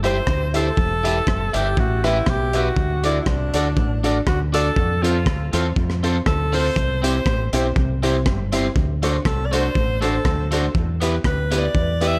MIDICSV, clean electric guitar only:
0, 0, Header, 1, 3, 480
1, 0, Start_track
1, 0, Tempo, 499168
1, 740, Time_signature, 4, 2, 24, 8
1, 11725, End_track
2, 0, Start_track
2, 0, Title_t, "Clean electric guitar"
2, 0, Program_c, 0, 27
2, 30, Note_on_c, 0, 64, 80
2, 40, Note_on_c, 0, 67, 90
2, 47, Note_on_c, 0, 72, 79
2, 52, Note_on_c, 0, 76, 80
2, 156, Note_off_c, 0, 64, 0
2, 160, Note_off_c, 0, 67, 0
2, 164, Note_off_c, 0, 72, 0
2, 167, Note_off_c, 0, 76, 0
2, 526, Note_on_c, 0, 64, 80
2, 530, Note_on_c, 0, 67, 86
2, 536, Note_on_c, 0, 72, 94
2, 542, Note_on_c, 0, 76, 89
2, 644, Note_off_c, 0, 64, 0
2, 646, Note_off_c, 0, 67, 0
2, 649, Note_off_c, 0, 72, 0
2, 652, Note_off_c, 0, 76, 0
2, 994, Note_on_c, 0, 64, 72
2, 1002, Note_on_c, 0, 67, 71
2, 1009, Note_on_c, 0, 71, 85
2, 1014, Note_on_c, 0, 76, 82
2, 1119, Note_off_c, 0, 64, 0
2, 1123, Note_off_c, 0, 67, 0
2, 1126, Note_off_c, 0, 71, 0
2, 1129, Note_off_c, 0, 76, 0
2, 1475, Note_on_c, 0, 64, 84
2, 1482, Note_on_c, 0, 67, 95
2, 1489, Note_on_c, 0, 71, 98
2, 1494, Note_on_c, 0, 76, 93
2, 1600, Note_off_c, 0, 64, 0
2, 1603, Note_off_c, 0, 67, 0
2, 1607, Note_off_c, 0, 71, 0
2, 1609, Note_off_c, 0, 76, 0
2, 1966, Note_on_c, 0, 64, 83
2, 1968, Note_on_c, 0, 67, 79
2, 1978, Note_on_c, 0, 71, 91
2, 1982, Note_on_c, 0, 76, 84
2, 2086, Note_off_c, 0, 64, 0
2, 2087, Note_off_c, 0, 67, 0
2, 2092, Note_off_c, 0, 71, 0
2, 2094, Note_off_c, 0, 76, 0
2, 2444, Note_on_c, 0, 64, 76
2, 2451, Note_on_c, 0, 67, 74
2, 2460, Note_on_c, 0, 71, 87
2, 2465, Note_on_c, 0, 76, 82
2, 2565, Note_off_c, 0, 64, 0
2, 2568, Note_off_c, 0, 67, 0
2, 2573, Note_off_c, 0, 71, 0
2, 2575, Note_off_c, 0, 76, 0
2, 2919, Note_on_c, 0, 62, 81
2, 2925, Note_on_c, 0, 66, 77
2, 2936, Note_on_c, 0, 69, 87
2, 2936, Note_on_c, 0, 74, 85
2, 3043, Note_off_c, 0, 62, 0
2, 3045, Note_off_c, 0, 66, 0
2, 3051, Note_off_c, 0, 69, 0
2, 3051, Note_off_c, 0, 74, 0
2, 3404, Note_on_c, 0, 62, 86
2, 3414, Note_on_c, 0, 66, 86
2, 3419, Note_on_c, 0, 69, 90
2, 3421, Note_on_c, 0, 74, 96
2, 3525, Note_off_c, 0, 62, 0
2, 3530, Note_off_c, 0, 66, 0
2, 3533, Note_off_c, 0, 69, 0
2, 3534, Note_off_c, 0, 74, 0
2, 3879, Note_on_c, 0, 62, 76
2, 3884, Note_on_c, 0, 66, 80
2, 3892, Note_on_c, 0, 69, 84
2, 3896, Note_on_c, 0, 74, 85
2, 4003, Note_off_c, 0, 62, 0
2, 4005, Note_off_c, 0, 66, 0
2, 4009, Note_off_c, 0, 69, 0
2, 4011, Note_off_c, 0, 74, 0
2, 4351, Note_on_c, 0, 62, 76
2, 4360, Note_on_c, 0, 66, 76
2, 4366, Note_on_c, 0, 69, 74
2, 4371, Note_on_c, 0, 74, 99
2, 4479, Note_off_c, 0, 62, 0
2, 4483, Note_off_c, 0, 66, 0
2, 4486, Note_off_c, 0, 69, 0
2, 4489, Note_off_c, 0, 74, 0
2, 4832, Note_on_c, 0, 60, 84
2, 4844, Note_on_c, 0, 65, 82
2, 4847, Note_on_c, 0, 69, 79
2, 4852, Note_on_c, 0, 72, 93
2, 4959, Note_off_c, 0, 60, 0
2, 4965, Note_off_c, 0, 65, 0
2, 4966, Note_off_c, 0, 69, 0
2, 4969, Note_off_c, 0, 72, 0
2, 5316, Note_on_c, 0, 60, 86
2, 5321, Note_on_c, 0, 65, 91
2, 5328, Note_on_c, 0, 69, 91
2, 5330, Note_on_c, 0, 72, 100
2, 5441, Note_off_c, 0, 60, 0
2, 5443, Note_off_c, 0, 65, 0
2, 5447, Note_off_c, 0, 69, 0
2, 5448, Note_off_c, 0, 72, 0
2, 5798, Note_on_c, 0, 60, 82
2, 5806, Note_on_c, 0, 65, 85
2, 5811, Note_on_c, 0, 69, 94
2, 5816, Note_on_c, 0, 72, 102
2, 5922, Note_off_c, 0, 60, 0
2, 5926, Note_off_c, 0, 65, 0
2, 5928, Note_off_c, 0, 69, 0
2, 5931, Note_off_c, 0, 72, 0
2, 6273, Note_on_c, 0, 60, 91
2, 6276, Note_on_c, 0, 65, 96
2, 6285, Note_on_c, 0, 69, 102
2, 6293, Note_on_c, 0, 72, 93
2, 6399, Note_off_c, 0, 60, 0
2, 6401, Note_off_c, 0, 65, 0
2, 6405, Note_off_c, 0, 69, 0
2, 6409, Note_off_c, 0, 72, 0
2, 6750, Note_on_c, 0, 60, 84
2, 6762, Note_on_c, 0, 64, 84
2, 6765, Note_on_c, 0, 67, 98
2, 6775, Note_on_c, 0, 72, 84
2, 6877, Note_off_c, 0, 60, 0
2, 6883, Note_off_c, 0, 64, 0
2, 6885, Note_off_c, 0, 67, 0
2, 6890, Note_off_c, 0, 72, 0
2, 7241, Note_on_c, 0, 60, 81
2, 7248, Note_on_c, 0, 64, 75
2, 7255, Note_on_c, 0, 67, 88
2, 7259, Note_on_c, 0, 72, 81
2, 7362, Note_off_c, 0, 60, 0
2, 7366, Note_off_c, 0, 64, 0
2, 7370, Note_off_c, 0, 67, 0
2, 7371, Note_off_c, 0, 72, 0
2, 7718, Note_on_c, 0, 60, 87
2, 7726, Note_on_c, 0, 64, 91
2, 7729, Note_on_c, 0, 67, 85
2, 7738, Note_on_c, 0, 72, 94
2, 7840, Note_off_c, 0, 60, 0
2, 7844, Note_off_c, 0, 64, 0
2, 7846, Note_off_c, 0, 67, 0
2, 7851, Note_off_c, 0, 72, 0
2, 8195, Note_on_c, 0, 60, 87
2, 8200, Note_on_c, 0, 64, 94
2, 8206, Note_on_c, 0, 67, 104
2, 8215, Note_on_c, 0, 72, 101
2, 8319, Note_off_c, 0, 60, 0
2, 8321, Note_off_c, 0, 64, 0
2, 8324, Note_off_c, 0, 67, 0
2, 8329, Note_off_c, 0, 72, 0
2, 8677, Note_on_c, 0, 57, 79
2, 8684, Note_on_c, 0, 62, 71
2, 8689, Note_on_c, 0, 66, 78
2, 8694, Note_on_c, 0, 72, 85
2, 8800, Note_off_c, 0, 57, 0
2, 8803, Note_off_c, 0, 62, 0
2, 8805, Note_off_c, 0, 66, 0
2, 8808, Note_off_c, 0, 72, 0
2, 9147, Note_on_c, 0, 57, 82
2, 9159, Note_on_c, 0, 62, 80
2, 9163, Note_on_c, 0, 66, 99
2, 9168, Note_on_c, 0, 72, 87
2, 9274, Note_off_c, 0, 57, 0
2, 9280, Note_off_c, 0, 62, 0
2, 9282, Note_off_c, 0, 66, 0
2, 9284, Note_off_c, 0, 72, 0
2, 9623, Note_on_c, 0, 57, 80
2, 9632, Note_on_c, 0, 62, 78
2, 9641, Note_on_c, 0, 66, 88
2, 9642, Note_on_c, 0, 72, 87
2, 9752, Note_off_c, 0, 57, 0
2, 9756, Note_off_c, 0, 62, 0
2, 9761, Note_off_c, 0, 66, 0
2, 9761, Note_off_c, 0, 72, 0
2, 10107, Note_on_c, 0, 57, 86
2, 10113, Note_on_c, 0, 62, 89
2, 10119, Note_on_c, 0, 66, 105
2, 10126, Note_on_c, 0, 72, 107
2, 10233, Note_off_c, 0, 57, 0
2, 10237, Note_off_c, 0, 62, 0
2, 10239, Note_off_c, 0, 66, 0
2, 10243, Note_off_c, 0, 72, 0
2, 10583, Note_on_c, 0, 59, 83
2, 10590, Note_on_c, 0, 64, 78
2, 10598, Note_on_c, 0, 67, 95
2, 10601, Note_on_c, 0, 71, 90
2, 10711, Note_off_c, 0, 59, 0
2, 10715, Note_off_c, 0, 64, 0
2, 10719, Note_off_c, 0, 67, 0
2, 10720, Note_off_c, 0, 71, 0
2, 11066, Note_on_c, 0, 59, 85
2, 11072, Note_on_c, 0, 64, 90
2, 11080, Note_on_c, 0, 67, 93
2, 11081, Note_on_c, 0, 71, 100
2, 11192, Note_off_c, 0, 59, 0
2, 11196, Note_off_c, 0, 64, 0
2, 11199, Note_off_c, 0, 67, 0
2, 11200, Note_off_c, 0, 71, 0
2, 11548, Note_on_c, 0, 59, 84
2, 11557, Note_on_c, 0, 64, 89
2, 11564, Note_on_c, 0, 67, 94
2, 11570, Note_on_c, 0, 71, 97
2, 11673, Note_off_c, 0, 59, 0
2, 11678, Note_off_c, 0, 64, 0
2, 11681, Note_off_c, 0, 67, 0
2, 11684, Note_off_c, 0, 71, 0
2, 11725, End_track
3, 0, Start_track
3, 0, Title_t, "Muted clean electric guitar strokes"
3, 1704, Note_on_c, 9, 29, 41
3, 1800, Note_off_c, 9, 29, 0
3, 11725, End_track
0, 0, End_of_file